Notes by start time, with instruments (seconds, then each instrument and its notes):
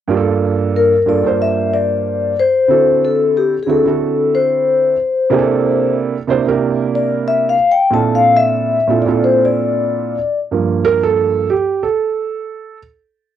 0.07 grand piano G2 A#3 D4 F4 G4
0.17 grand piano A4
0.76 vibraphone A#4
1.06 grand piano G2 A#3 D4 F4 A4, vibraphone D5
1.24 grand piano G2 A#3 D4 F4 C5
1.42 vibraphone E5
1.74 vibraphone D5
2.40 vibraphone C5
2.68 grand piano D3 C4 E4 F#4 A4
3.05 vibraphone A4
3.37 vibraphone G4
3.63 grand piano D3, vibraphone G#4
3.67 grand piano C4 E4 F#4 A4, vibraphone A4
3.85 grand piano D3 C4 E4 F#4 A4
4.35 vibraphone C5
5.30 grand piano C3 A#3 D4 E4 G4 G#4
5.39 grand piano A4
6.27 grand piano C3 A#3 D4 E4 G4 C5
6.46 grand piano C3 A#3 D4 E4 G4 A#4
6.95 vibraphone D5
7.28 vibraphone E5
7.49 vibraphone F5
7.71 vibraphone G5
7.90 grand piano A#2 C4 D4 E4 F4 A4, vibraphone A5
8.15 vibraphone F5
8.36 vibraphone E5
8.88 grand piano A#2 C4 D4 E4 F4 A4
9.02 vibraphone D5
9.06 grand piano A#2 C4 D4 E4 F4 A4
9.24 vibraphone C5
9.45 vibraphone D5
10.51 grand piano G2 F3 A#3
10.85 grand piano A#4
11.03 grand piano A4
11.50 grand piano G4
11.83 grand piano A4